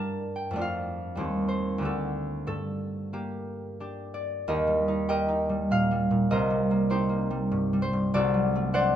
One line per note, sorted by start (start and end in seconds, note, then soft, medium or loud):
0.00 0.58 G2 medium
0.00 0.57 G3 soft
0.00 0.55 D4 soft
0.00 0.59 A#4 soft
0.00 1.19 D5 medium
0.00 0.55 F5 medium
0.00 0.34 G5 medium
0.00 0.64 A5 medium
0.36 0.58 G5 medium
0.51 1.20 F2 medium
0.51 1.20 A3 soft
0.56 1.20 D4 soft
0.56 0.62 F4 soft
0.61 1.49 F5 medium
1.15 1.84 D#2 medium
1.15 1.84 G3 soft
1.15 1.84 C4 soft
1.15 1.23 G4 soft
1.48 1.83 C5 medium
1.78 2.50 D2 medium
1.78 2.50 A3 soft
1.82 3.79 D4 soft
1.82 1.86 F#4 soft
1.82 2.46 A4 medium
2.47 4.48 G2 soft
2.47 4.48 A4 medium
3.13 6.70 A#3 soft
3.13 3.80 G4 soft
3.80 4.49 D4 soft
3.80 4.48 G4 soft
4.14 4.49 D5 medium
4.48 6.34 D#2 medium
4.48 5.08 G4 medium
4.48 5.09 A#4 medium
4.48 5.08 D#5 medium
4.67 5.48 G3 soft
4.88 5.27 D#4 soft
5.08 6.90 G4 medium
5.08 6.31 A#4 medium
5.08 6.29 D#5 medium
5.08 8.16 G5 medium
5.28 6.90 D#4 soft
5.49 5.90 G3 soft
5.71 6.09 A#2 soft
5.71 6.74 F5 medium
5.91 6.49 G3 soft
6.11 6.33 A#2 soft
6.31 8.13 C2 medium
6.31 8.17 A#4 medium
6.31 6.89 C5 medium
6.31 8.16 D#5 medium
6.50 7.29 G3 soft
6.71 7.08 A#3 soft
6.90 8.96 C4 soft
6.90 8.16 D#4 medium
6.90 8.16 G4 medium
6.90 7.81 C5 medium
7.09 8.15 A#3 soft
7.30 7.72 G3 soft
7.51 7.92 G2 soft
7.73 8.16 G3 soft
7.82 8.73 C5 medium
7.93 8.16 G2 soft
8.14 8.96 C2 medium
8.14 8.96 F#4 medium
8.14 8.96 A4 medium
8.14 8.74 D5 medium
8.34 8.96 F#3 soft
8.55 8.93 A3 medium
8.73 8.96 D4 medium
8.73 8.96 C5 medium
8.73 8.96 D5 medium
8.73 8.96 F#5 medium